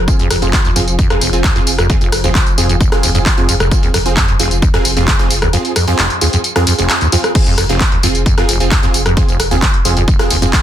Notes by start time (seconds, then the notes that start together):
Already playing: F3
0.08 C4 F4 G#4, kick, closed hi-hat, tambourine
0.19 F1 F2, closed hi-hat, tambourine
0.30 F1 F2, cross-stick, open hi-hat, tambourine
0.42 F1 C4 F4 G#4, closed hi-hat, tambourine
0.53 kick, clap, closed hi-hat, tambourine
0.65 F1 D#2, closed hi-hat, tambourine
0.76 F1 F2 C4 F4 G#4, open hi-hat, tambourine
0.87 F1, closed hi-hat, tambourine
0.99 F2, kick, closed hi-hat, tambourine
1.10 F1 F2 C4 F4 G#4, cross-stick, closed hi-hat, tambourine
1.21 F1, open hi-hat, tambourine
1.33 F1 C4 F4 G#4, closed hi-hat, tambourine
1.44 D#2, kick, clap, closed hi-hat, tambourine
1.56 F1 F2 C4 F4 G#4, closed hi-hat, tambourine
1.67 F1, open hi-hat, tambourine
1.78 F1 F2, cross-stick, closed hi-hat, tambourine
1.90 F2 C4 F4 G#4, kick, closed hi-hat, tambourine
2.01 F1, closed hi-hat, tambourine
2.12 F1, cross-stick, open hi-hat, tambourine
2.24 F1 D#2 C4 F4 G#4, closed hi-hat, tambourine
2.35 F2, kick, clap, closed hi-hat, tambourine
2.47 F1, closed hi-hat, tambourine
2.58 F1 F2 C4 F4 G#4, open hi-hat, tambourine
2.69 F1 F2, closed hi-hat, tambourine
2.81 F1, kick, closed hi-hat, tambourine
2.92 F1 C4 F4 G#4, cross-stick, closed hi-hat, tambourine
3.03 F1 D#2, open hi-hat, tambourine
3.15 F1 F2 C4 F4 G#4, closed hi-hat, tambourine
3.26 kick, clap, closed hi-hat, tambourine
3.38 F1 F2 C4 F4 G#4, closed hi-hat, tambourine
3.49 F1 F2, open hi-hat, tambourine
3.60 F1, cross-stick, closed hi-hat, tambourine
3.71 C4 F4 G#4, kick, closed hi-hat, tambourine
3.83 F1 D#2, closed hi-hat, tambourine
3.94 F1 F2, cross-stick, open hi-hat, tambourine
4.06 F1 C4 F4 G#4, closed hi-hat, tambourine
4.17 F2, kick, clap, closed hi-hat, tambourine
4.28 F1 F2, closed hi-hat, tambourine
4.40 F1 C4 F4 G#4, open hi-hat, tambourine
4.51 F1, closed hi-hat, tambourine
4.62 D#2, kick, closed hi-hat, tambourine
4.74 F1 F2 C4 F4 G#4, cross-stick, closed hi-hat, tambourine
4.85 F1, open hi-hat, tambourine
4.97 F1 F2 C4 F4 G#4, closed hi-hat, tambourine
5.08 kick, clap, closed hi-hat, tambourine
5.19 F1 C4 F4 G#4, closed hi-hat, tambourine
5.30 F1, open hi-hat, tambourine
5.42 F1 D#2, cross-stick, closed hi-hat, tambourine
5.53 F2 C4 F4 G#4, closed hi-hat, tambourine
5.65 closed hi-hat, tambourine
5.76 F2, cross-stick, open hi-hat, tambourine
5.88 F2 C4 F4 G#4, closed hi-hat, tambourine
5.99 F1, clap, closed hi-hat, tambourine
6.10 closed hi-hat, tambourine
6.21 D#2 C4 F4 G#4, open hi-hat, tambourine
6.33 F2, closed hi-hat, tambourine
6.44 closed hi-hat, tambourine
6.56 F2 C4 F4 G#4, cross-stick, closed hi-hat, tambourine
6.67 F2, open hi-hat, tambourine
6.78 F1 C4 F4 G#4, closed hi-hat, tambourine
6.90 clap, closed hi-hat, tambourine
7.01 D#2, closed hi-hat, tambourine
7.12 F2 C4 F4 G#4, open hi-hat, tambourine
7.24 cross-stick, closed hi-hat, tambourine
7.35 C4 F4 G#4, kick, closed hi-hat, crash, tambourine
7.47 F1 F2, closed hi-hat, tambourine
7.58 F1 F2, cross-stick, open hi-hat, tambourine
7.69 F1 C4 F4 G#4, closed hi-hat, tambourine
7.81 kick, clap, closed hi-hat, tambourine
7.92 F1 D#2, closed hi-hat
8.03 F1 F2 C4 F4 G#4, open hi-hat, tambourine
8.15 F1, closed hi-hat, tambourine
8.26 F2, kick, closed hi-hat, tambourine
8.38 F1 F2 C4 F4 G#4, cross-stick, closed hi-hat, tambourine
8.49 F1, open hi-hat, tambourine
8.60 F1 C4 F4 G#4, closed hi-hat, tambourine
8.71 D#2, kick, clap, closed hi-hat, tambourine
8.83 F1 F2 C4 F4 G#4, closed hi-hat, tambourine
8.94 F1, open hi-hat, tambourine
9.06 F1 F2, cross-stick, closed hi-hat, tambourine
9.17 F2 C4 F4 G#4, kick, closed hi-hat, tambourine
9.28 F1, closed hi-hat, tambourine
9.40 F1, cross-stick, open hi-hat, tambourine
9.51 F1 D#2 C4 F4 G#4, closed hi-hat, tambourine
9.62 F2, kick, clap, closed hi-hat, tambourine
9.74 F1, closed hi-hat
9.85 F1 F2 C4 F4 G#4, open hi-hat, tambourine
9.97 F1 F2, closed hi-hat, tambourine
10.08 F1, kick, closed hi-hat, tambourine
10.19 F1 C4 F4 G#4, cross-stick, closed hi-hat, tambourine
10.30 F1 D#2, open hi-hat, tambourine
10.42 F1 F2 C4 F4 G#4, closed hi-hat, tambourine
10.53 kick, clap, closed hi-hat, tambourine